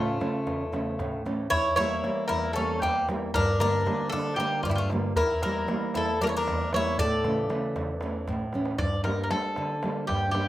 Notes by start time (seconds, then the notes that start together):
Already playing: A2 C#3 A3 C#4 F4
0.20 C#3 A3 C#4, darbuka tek
0.47 E2, darbuka tek
0.61 darbuka tek
0.72 C#3 A3 C#4, darbuka tek
0.86 darbuka tek
0.99 A2, darbuka tek, darbuka dum
1.13 darbuka tek
1.25 E3 A3 C#4, darbuka tek
1.39 darbuka tek
1.50 E2 E4 C#5, darbuka dum
1.76 E3 G3 A#3 E4 C#5, darbuka tek
2.04 E3 G3 A#3, darbuka tek
2.17 darbuka tek
2.28 E2 E4 A#4, darbuka tek
2.53 E3 C#4 A4, darbuka tek
2.57 G3 A#3
2.82 E2 A#3 G4, darbuka tek, darbuka dum
3.08 E3 G3 A#3, darbuka tek
3.34 G2 D4 A#4, darbuka dum
3.60 D3 G3 A#3 D4 A#4, darbuka tek
3.86 D3 G3 A#3, darbuka tek
4.00 darbuka tek
4.09 D3 D4 A4, darbuka tek
4.36 D3 G3 A#3 G4, darbuka tek
4.63 G2 A#3 F4, darbuka tek, darbuka dum
4.69 G3 E4
4.75 A3 F4
4.90 D3 G3 A#3, darbuka tek
5.16 E2 E4 A#4, darbuka dum
5.42 E3 G3 A#3 E4 A#4, darbuka tek
5.68 E3 G3 A#3, darbuka tek
5.82 darbuka tek
5.94 E2 E4 A4, darbuka tek
6.21 E3 G3 A#3 D4 A#4, darbuka tek
6.27 E4 C#5
6.37 D4 A#4
6.47 E2, darbuka tek, darbuka dum
6.73 E3 G3 A#3 E4 C#5, darbuka tek
6.98 A2 A4 D5, darbuka dum
7.12 darbuka tek
7.24 C#3 E3 A3, darbuka tek
7.49 C#3 E3 A3, darbuka tek
7.63 darbuka tek
7.76 E2, darbuka tek
8.01 E3 A3 C#4, darbuka tek
8.28 A2, darbuka tek, darbuka dum
8.40 darbuka dum
8.53 E3 A3 C#4, darbuka tek
8.65 darbuka tek
8.78 G2 D5, darbuka dum
8.92 darbuka tek
9.04 G3 A#3 D4 A#4, darbuka tek
9.24 A#4
9.30 G3 A#3 D4 A4, darbuka tek
9.56 D3, darbuka tek
9.70 darbuka tek
9.83 G3 A#3 D4, darbuka tek
9.96 darbuka tek
10.07 G2 G4, darbuka tek, darbuka dum
10.22 darbuka tek
10.31 G3 A#3 D4 G4, darbuka tek